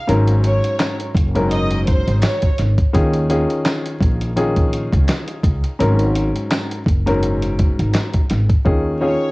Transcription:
0.08 G#1 G#2 F#3 C#4 A#4, closed hi-hat
0.28 closed hi-hat
0.43 C#5, closed hi-hat
0.64 closed hi-hat
0.79 snare, clap, closed hi-hat, tambourine
1.00 closed hi-hat
1.15 F#1, kick, closed hi-hat
1.35 G#2 F#3 C#4 A#4, closed hi-hat
1.51 D#5, closed hi-hat
1.71 closed hi-hat
1.87 C5, kick, closed hi-hat
2.08 G#1, closed hi-hat
2.22 C#5, snare, clap, closed hi-hat, tambourine
2.42 kick, closed hi-hat
2.58 G#1, snare, closed hi-hat
2.78 kick, closed hi-hat
2.93 D#2 D#3 C#4 F4 G#4, kick, closed hi-hat
3.13 closed hi-hat
3.29 D#3 C#4 F4 G#4, closed hi-hat
3.50 closed hi-hat
3.65 snare, clap, closed hi-hat, tambourine
3.85 closed hi-hat
4.00 A#1, kick, closed hi-hat
4.21 closed hi-hat
4.36 D#3 C#4 F4 G#4, closed hi-hat
4.56 kick, closed hi-hat
4.73 closed hi-hat
4.93 C#2, kick, closed hi-hat
5.08 snare, clap, closed hi-hat, tambourine
5.28 closed hi-hat
5.43 C#2, kick, closed hi-hat
5.64 closed hi-hat
5.79 G#1 G#2 F#3 C#4 A#4, closed hi-hat
5.99 closed hi-hat
6.16 closed hi-hat
6.36 closed hi-hat
6.51 snare, clap, closed hi-hat, tambourine
6.71 closed hi-hat
6.86 F#1, kick, closed hi-hat
7.06 G#2 F#3 C#4 A#4, closed hi-hat
7.23 closed hi-hat
7.42 closed hi-hat
7.59 kick, closed hi-hat
7.79 G#1, closed hi-hat
7.93 snare, clap, closed hi-hat, tambourine
8.14 kick, closed hi-hat
8.30 G#1, snare, closed hi-hat
8.50 kick, closed hi-hat
8.65 D#2 D#3 C#4 F4 G#4, kick
9.01 D#3 C#4 F4 G#4 C#5

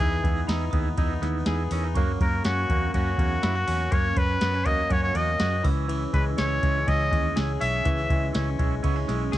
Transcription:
Already playing: B3 D#4 G#4 C#6
0.00 E2 E3 G#3 B3 D#4 E4 B4, kick, ride
0.22 E2 G#3 B3 D#4 E4 G#4, kick, ride
0.47 E2 D#4 E4 G#4 B5, snare, ride
0.71 D#2 G#3 B3 D#4 E4 G#4 D#6, kick, ride
0.97 E2 E3 G#3 B3 D#4 E4 G#4, kick, ride
1.21 D#2 G#3 B3 D#4 E4 G#4, snare, ride
1.46 E2 E3 G#3 B3 D#4 E4 G#4, snare, ride
1.71 E2 C#4 D#4 E4 A#4, open hi-hat, ride
1.84 D#4
1.95 F#2 C#3 F#3 A#3 C#4 F#4 A#4 C#6, kick, ride
2.20 F#2 A#3 C#4 F#4 A#4, kick, ride
2.44 F#2 C#4 F#4 G#4, snare, ride
2.69 E2 F#3 A#3 C#4 F#4 A#4, kick, ride
2.94 F#2 C#3 F#3 A#3 C#4 F#4 A#4, kick, ride
3.18 E2 F#3 A#3 C#4 F#4 G#4, kick, ride
3.43 F#2 C#3 F#3 A#3 C#4 E4 F#4 A#4, snare, ride
3.55 F#4
3.67 E2 F#3 A#3 C#4 F#4 A#4, open hi-hat, ride
3.92 F#2 C#3 F#3 A#3 C#4 F#4 A#4 C#5, kick, ride
4.16 F#2 F#3 C#4 F#4 A#4 B4, kick, ride
4.41 F#2 B3 C#4 F#4 A#4, snare, ride
4.54 C#4
4.65 E2 F#3 A#3 C#4 F#4 A#4 D#5, kick, ride
4.90 F#2 C#3 F#3 A#3 C#4 F#4 A#4 C#5, kick, ride
5.03 C#5
5.14 E2 F#3 A#3 C#4 F#4 C#5 D#5, ride
5.39 F#2 C#3 F#3 A#3 C#4 F#4 G#4, snare, ride
5.64 C#2 C#3 E3 G#3 C#4 E4 G#4 E6, kick, open hi-hat, ride
5.88 E3, ride
6.12 C#2 E3 G#3 C#4 B4, kick, ride
6.16 E4 G#4
6.37 C#2 C#4 E4 G#4 C#5, snare, ride
6.62 C#2 G#3 C#4 E4 G#4, kick, ride
6.86 C#2 C#3 E3 G#3 C#4 E4 G#4 D#5, kick, ride
7.11 D#2 E3 G#3 C#4 E4 G#4, kick, ride
7.36 C#2 C#3 E3 G#3 C#4 E4 G#4, snare, ride
7.60 B1 C#4 E4 G#4 E5, open hi-hat, ride
7.85 C#2 C#3 E3 G#3 C#4 E4 G#4, kick, ride
8.10 C#2 G#3 C#4 E4 G#4, kick, ride
8.14 E3
8.33 C#2 C#4 E4 G#4, snare, ride
8.59 B1 E3 G#3 C#4 E4 G#4, kick, ride
8.83 C#2 C#3 E3 G#3 B3 C#4 E4 G#4 C#6, kick, ride
8.96 C#4
9.08 B1 E3 G#3 C#4 E4 G#4, snare, ride
9.32 C#2 C#3 E3 C#4 E4 G#4, snare, ride

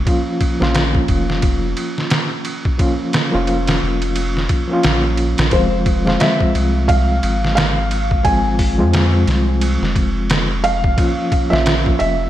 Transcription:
0.05 F3 A#3 C#4 F4, kick, ride
0.41 kick, ride
0.60 A#1 F3 A#3 C#4 F4, snare
0.75 snare, ride
0.95 kick
1.08 F1, kick, ride
1.30 snare
1.42 kick, ride
1.77 ride
1.98 snare
2.10 snare, ride
2.45 ride
2.65 kick
2.78 F3 A#3 C#4 F4, kick, ride
3.13 snare, ride
3.32 F1 F3 A#3 C#4 F4
3.47 ride
3.67 snare, ride
3.83 F1
4.02 ride
4.16 ride
4.37 snare
4.49 kick, ride
4.68 F3 A#3 C#4
4.73 F4
4.83 A#1, snare, ride
5.17 ride
5.38 A#1, snare, ride
5.51 F1 F3 G#3 C4 F4 C5, kick, ride
5.86 kick, ride
6.05 F3 G#3 C4 F4, snare
6.20 E5, snare, ride
6.41 kick
6.55 C2, ride
6.88 F5, kick, ride
7.23 G#1, ride
7.45 snare
7.55 F5, snare, ride
7.91 ride
8.11 kick
8.23 F3 G#3 C4 F4 G#5, kick, ride
8.59 kick, open hi-hat
8.78 F2 F3 G#3 C4 F4
8.93 snare, ride
9.27 C2, snare, ride
9.61 ride
9.82 F1, snare
9.96 kick, ride
10.30 snare, ride
10.64 F5, ride
10.84 kick
10.97 F3 A#3 C#4 F4, kick, ride
11.32 kick, ride
11.50 A#1 F3 A#3 C#4 F4 E5, snare
11.66 snare, ride
11.86 kick
11.99 F1 E5, ride

